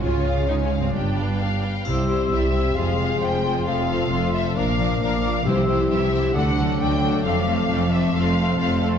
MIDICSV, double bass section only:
0, 0, Header, 1, 2, 480
1, 0, Start_track
1, 0, Tempo, 453172
1, 40, Time_signature, 4, 2, 24, 8
1, 4840, Tempo, 446429
1, 9588, End_track
2, 0, Start_track
2, 0, Title_t, "Double bass section"
2, 0, Program_c, 0, 48
2, 42, Note_on_c, 0, 37, 42
2, 992, Note_on_c, 0, 31, 35
2, 1002, Note_off_c, 0, 37, 0
2, 1752, Note_off_c, 0, 31, 0
2, 1968, Note_on_c, 0, 36, 42
2, 2394, Note_off_c, 0, 36, 0
2, 2456, Note_on_c, 0, 36, 44
2, 2876, Note_off_c, 0, 36, 0
2, 2941, Note_on_c, 0, 29, 43
2, 3357, Note_off_c, 0, 29, 0
2, 3411, Note_on_c, 0, 29, 42
2, 3831, Note_off_c, 0, 29, 0
2, 3878, Note_on_c, 0, 29, 50
2, 4302, Note_off_c, 0, 29, 0
2, 4355, Note_on_c, 0, 29, 44
2, 4779, Note_off_c, 0, 29, 0
2, 4829, Note_on_c, 0, 34, 45
2, 5260, Note_off_c, 0, 34, 0
2, 5313, Note_on_c, 0, 34, 54
2, 5744, Note_off_c, 0, 34, 0
2, 5798, Note_on_c, 0, 36, 51
2, 6225, Note_off_c, 0, 36, 0
2, 6286, Note_on_c, 0, 36, 47
2, 6707, Note_off_c, 0, 36, 0
2, 6768, Note_on_c, 0, 38, 51
2, 7189, Note_off_c, 0, 38, 0
2, 7251, Note_on_c, 0, 38, 52
2, 7670, Note_off_c, 0, 38, 0
2, 7723, Note_on_c, 0, 29, 56
2, 8144, Note_off_c, 0, 29, 0
2, 8199, Note_on_c, 0, 29, 60
2, 8622, Note_off_c, 0, 29, 0
2, 8677, Note_on_c, 0, 29, 55
2, 9101, Note_off_c, 0, 29, 0
2, 9152, Note_on_c, 0, 29, 59
2, 9578, Note_off_c, 0, 29, 0
2, 9588, End_track
0, 0, End_of_file